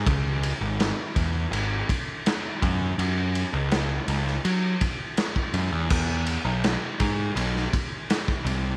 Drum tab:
CC |----------------|----------------|x---------------|
RD |x-x-x-x-x-x-x-x-|x-x-x-x-x-x-x-x-|--x-x-x-x-x-x-x-|
SD |----o-------o---|----o--o----o---|----o----o--oo--|
BD |o-----o---o---o-|----------o--o--|o-----o---o--o--|